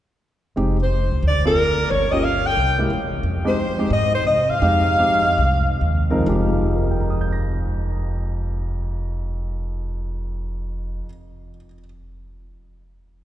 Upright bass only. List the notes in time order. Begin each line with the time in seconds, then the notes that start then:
0.57 F1
1.11 C#2
1.23 D2
1.90 G1
2.56 C2
2.90 E2
3.23 F2
3.90 G#2
4.25 C3
4.62 F2
5.38 C2
5.81 D#2
6.26 F1